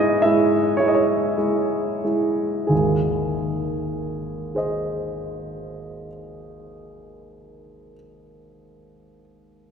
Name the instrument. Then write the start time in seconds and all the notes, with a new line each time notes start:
grand piano
Already playing: G#2 G#3 E4 C#5 D#5
0.22 G#3 E4 E5
0.77 G#3 E4 C#5
0.88 D#5
0.94 C#5
1.38 G#3 E4
2.04 G#3 E4
2.67 G#1 D#2 G#4
4.55 G#4 C5 D#5